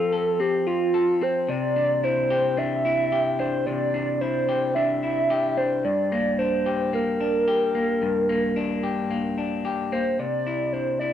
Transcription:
0.00 1.49 F3 medium
0.00 0.39 C4 medium
0.00 0.66 F4 medium
0.00 0.11 A4 medium
0.00 0.42 A4 loud
0.12 0.93 A4 medium
0.40 1.21 C4 medium
0.40 0.67 G4 medium
0.67 1.54 F4 medium
0.67 1.24 F4 loud
0.94 1.54 A4 medium
1.21 1.76 C4 medium
1.21 1.49 C5 medium
1.48 3.66 C3 medium
1.48 2.06 D5 loud
1.76 2.57 D4 medium
2.03 2.84 E4 medium
2.03 2.60 C5 loud
2.30 3.12 G4 medium
2.57 3.39 D4 medium
2.57 3.39 E5 loud
2.85 4.20 E4 medium
3.12 4.48 G4 medium
3.39 3.94 D4 medium
3.39 3.65 C5 medium
3.66 5.84 C3 medium
3.66 4.22 D5 loud
3.94 4.76 D4 medium
4.21 5.02 E4 medium
4.21 4.74 C5 loud
4.49 5.30 G4 medium
4.75 5.57 D4 medium
4.75 5.59 E5 loud
5.03 5.90 E4 medium
5.30 6.66 G4 medium
5.57 6.12 D4 medium
5.57 5.86 C5 medium
5.84 8.01 G2 medium
5.84 6.40 D5 loud
6.12 6.92 A#3 medium
6.38 7.20 D4 medium
6.38 6.93 C5 loud
6.66 7.47 G4 medium
6.93 7.74 A#3 medium
6.93 9.61 A#4 medium
7.20 8.56 D4 medium
7.48 8.83 G4 medium
7.75 8.28 A#3 medium
8.02 10.19 G2 medium
8.29 9.09 A#3 medium
8.56 9.37 D4 medium
8.83 9.65 G4 medium
9.11 9.91 A#3 medium
9.38 10.46 D4 medium
9.65 11.13 G4 medium
9.92 10.25 A#3 medium
9.92 10.17 C5 medium
10.19 11.13 C3 medium
10.19 10.74 D5 loud
10.47 11.00 E4 medium
10.73 11.13 D4 soft
10.73 10.99 C5 medium
10.99 11.13 E4 medium
10.99 11.13 D5 medium

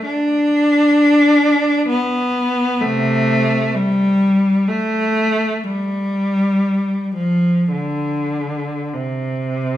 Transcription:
0.06 1.87 D4 medium
1.89 2.82 B3 medium
2.82 3.71 C3 medium
2.82 3.75 A3 medium
3.75 4.68 G3 medium
4.68 5.65 A3 medium
5.64 7.16 G3 medium
7.14 7.71 F3 medium
7.72 8.91 D3 medium
8.94 9.77 C3 soft

